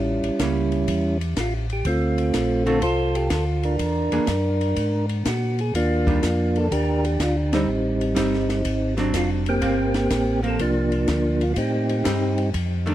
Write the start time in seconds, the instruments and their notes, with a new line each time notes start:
Already playing: tonewheel organ A1 G3 C#4 E4
0.23 tonewheel organ A1, ride
0.39 tonewheel organ C#2, hollow-body jazz guitar G3 A#3 C#4, kick, snare, hi-hat pedal, ride
0.72 ride
0.88 tonewheel organ E2, kick, ride
1.21 ride
1.36 tonewheel organ A1 F4, kick, snare, hi-hat pedal, ride
1.70 tonewheel organ G4, ride
1.85 tonewheel organ D2 A3 C4 F4, kick, ride
2.18 ride
2.33 tonewheel organ A#1, kick, snare, hi-hat pedal, ride
2.66 hollow-body jazz guitar D3 A3 C4 F4, tonewheel organ A4, ride
2.82 tonewheel organ C2 F4 A4 C5, kick, ride
3.15 tonewheel organ G4, ride
3.30 tonewheel organ D2 A4, kick, snare, hi-hat pedal, ride
3.63 tonewheel organ D4 A#4, ride
3.79 tonewheel organ E2, kick, ride
4.12 tonewheel organ E2, hollow-body jazz guitar E3 A#3 D4 G#4, ride
4.27 tonewheel organ F#2, kick, snare, hi-hat pedal, ride
4.61 ride
4.76 tonewheel organ G#2, kick, ride
5.09 ride
5.25 tonewheel organ A#2 F#4, kick, snare, hi-hat pedal, ride
5.59 tonewheel organ G#4, ride
5.74 tonewheel organ D#2 A#3 D4 F4, kick, ride
6.07 hollow-body jazz guitar D#3 G3 D4 F4, kick, ride
6.23 tonewheel organ F2, kick, snare, hi-hat pedal, ride
6.56 tonewheel organ A4, ride
6.71 tonewheel organ D#2 D4 G4 A#4, kick, ride
7.04 tonewheel organ G4, ride
7.20 tonewheel organ D2 F4, kick, snare, hi-hat pedal, ride
7.53 hollow-body jazz guitar G3 C4 D#4, tonewheel organ G3 C4 D#4, snare, ride
7.67 tonewheel organ A1
8.01 ride
8.15 tonewheel organ G1, hollow-body jazz guitar G3 C4 D#4, kick, snare, hi-hat pedal, ride
8.34 snare
8.49 snare, ride
8.65 tonewheel organ G#1, kick, ride
8.97 hollow-body jazz guitar F#3 C4 D4, snare, ride
9.14 tonewheel organ F1 F4, kick, snare, hi-hat pedal, ride
9.46 tonewheel organ A#3 C4 G4, ride
9.61 tonewheel organ G1, hollow-body jazz guitar F3 A#3 C4, kick, ride
9.94 snare, ride
10.10 tonewheel organ A1, kick, snare, hi-hat pedal, ride
10.43 hollow-body jazz guitar F3 A#3 C4, ride
10.48 tonewheel organ A4
10.59 tonewheel organ C2 F3 A#3 D4, kick, ride
10.92 ride
11.08 tonewheel organ D2, kick, snare, hi-hat pedal, ride
11.41 tonewheel organ F4, ride
11.54 tonewheel organ A2 C4 D#4 F4, kick, ride
11.58 tonewheel organ G4
11.89 ride
12.04 tonewheel organ G2, hollow-body jazz guitar G3 C4 D#4, kick, snare, hi-hat pedal, ride
12.38 ride
12.54 tonewheel organ F2, kick, ride
12.86 hollow-body jazz guitar D#3 A3 D4, ride